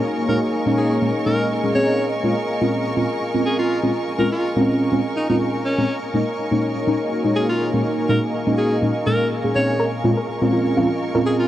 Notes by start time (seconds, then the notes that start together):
Already playing: A#3 D#4 F#4 G#4 A#4 C#5 D#5 F5 G#5 C#6
0.28 A#2 G#3 A#3 C#4 D#4 A#4
0.66 A#2 G#3 A#3 C#4 D#4
0.77 G#4
1.01 A#2 G#3 A#3 C#4 D#4
1.26 A#2 G#3 A#3 C#4 D#4 A#4
1.63 A#2 G#3 A#3 C#4 G#4
1.75 A#2 G#3 C4 C#4 G#4 C#5
1.99 F4 A#4
2.23 A#2 G#3 C4 C#4 F4
2.61 A#2 G#3 C4 C#4 F4
2.97 A#2 G#3 C4 C#4 F4
3.34 A#2 G#3 C4 C#4 F4
3.45 G#4
3.59 F4
3.83 A#2 G#3 C4 C#4 F4
4.18 A#2 G#3 C4 C#4 F4 A#4
4.32 F4
4.56 A#2 G#3 C4 C#4 F4
4.92 A#2 G#3 C4 C#4 F4
5.16 D#4
5.29 A#2 G#3 C4 C#4 D#4 F4
5.65 C#4
5.78 A#2 G#3 C4 C#4 F4
5.89 A#3 D#4 F#4 G#4 C#5
6.14 A#2 G#3 A#3 C#4 D#4
6.21 F5
6.51 A#2 G#3 A#3 C#4 D#4
6.87 A#2 G#3 A#3 C#4 D#4
7.24 A#2 G#3 A#3 C#4 D#4
7.36 G#4
7.49 F4
7.73 A#2 G#3 A#3 C#4 D#4
7.84 D#5
8.09 A#2 G#3 A#3 C#4 D#4 A#4
8.46 A#2 G#3 A#3 C#4 D#4
8.58 G#4
8.82 A#2 G#3 A#3 C#4 D#4
9.06 A#2 G#3 A#3 C#4 D#4 A#4
9.44 A#2 G#3 A#3 C#4 G#4
9.55 A#2 G#3 C4 C#4 G#4 C#5
9.79 F4 A#4 C#6
10.04 A#2 G#3 C4 C#4 F4
10.17 A#4
10.41 A#2 G#3 C4 C#4 F4
10.53 F4
10.77 A#2 G#3 C4 C#4 F4
11.15 A#2 G#3 C4 C#4 F4 A#4
11.26 G#4
11.39 F4